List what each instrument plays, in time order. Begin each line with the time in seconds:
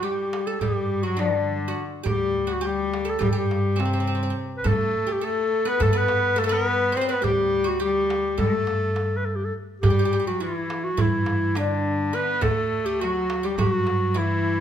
0.03 cello G3, oud G4, clarinet G4, darbuka ka
0.33 darbuka tek
0.47 clarinet A4, oud A4
0.60 upright bass G2, cello G3, clarinet G4, oud G4, darbuka dum
1.03 cello F#3, clarinet F#4, oud F#4
1.17 cello D3, oud D4, clarinet D4, darbuka tek
1.68 oud F#4
1.77 darbuka ka
2.03 upright bass D2, cello G3, oud G4, darbuka dum
2.08 clarinet G4
2.36 darbuka ka
2.47 oud F#4
2.53 clarinet F#4
2.61 cello G3, oud G4
2.66 clarinet G4
2.94 darbuka tek
3.05 oud A4
3.10 clarinet A4
3.19 upright bass G2, cello G3, oud G4, darbuka dum
3.24 clarinet G4 A4
3.33 cello G3, oud G4
3.37 clarinet G4
3.51 darbuka tek
3.76 cello C3, oud C4, darbuka tek
3.81 clarinet C4
3.85 oud C4
3.93 oud C4
4.00 oud C4
4.07 oud C4
4.15 oud C4
4.23 oud C4
4.30 oud C4
4.37 darbuka ka
4.58 clarinet B4
4.64 upright bass G2, cello A3, oud A4, clarinet A4, darbuka dum
5.07 oud G4
5.12 clarinet G4
5.21 cello A3, oud A4, clarinet A4, darbuka ka
5.65 cello B3, oud B4, clarinet B4
5.80 upright bass G2, cello A3, oud A4, clarinet A4, darbuka dum
5.93 cello B3, oud B4
5.98 clarinet B4
6.08 darbuka tek
6.36 cello A3, oud A4, clarinet A4, darbuka tek
6.44 oud A4, clarinet A4
6.49 cello B3, oud B4
6.53 clarinet A#4
6.68 clarinet B4
6.92 oud C5, clarinet C5
6.96 cello C4, oud B4
7.01 oud C5
7.07 cello B3, oud B4, clarinet B4 C5
7.22 upright bass D2, cello G3, oud G4, clarinet G4, darbuka dum
7.53 darbuka ka
7.64 oud F#4
7.69 clarinet F#4
7.80 cello G3, oud G4, clarinet G4
8.10 darbuka tek
8.38 upright bass G2, cello A3, oud A4, clarinet A4, darbuka dum
8.67 darbuka tek
8.82 darbuka ka
8.96 darbuka tek
9.17 clarinet B4
9.25 clarinet A4, darbuka ka
9.36 clarinet G4
9.45 clarinet A4
9.54 darbuka ka
9.82 upright bass G2, cello G3, clarinet G4, oud G4, darbuka dum
9.90 oud G4
9.99 oud G4
10.05 oud G4
10.12 oud G4, darbuka ka
10.20 oud G4
10.27 cello F#3, clarinet F#4, oud G4
10.40 cello E3, oud E4, clarinet F4, darbuka ka
10.57 clarinet E4
10.70 darbuka tek
10.84 clarinet F#4
10.92 cello F#3
10.97 upright bass G2, cello E3, oud E4, darbuka dum
11.01 clarinet E4
11.26 darbuka tek
11.55 cello D3, oud D4, clarinet D4, darbuka tek
12.13 cello B3, oud B4, clarinet B4
12.41 upright bass D2, cello A3, oud A4, clarinet A4, darbuka dum
12.72 darbuka ka
12.86 clarinet G4, oud G4
13.01 cello F#3, clarinet F#4, oud F#4, darbuka ka
13.30 darbuka tek
13.43 cello G3, oud G4, clarinet G4
13.56 upright bass G2, cello F#3, oud F#4, darbuka dum
13.61 clarinet G4
13.72 clarinet F#4
13.87 darbuka tek
14.14 cello E3, oud E4, clarinet E4, darbuka tek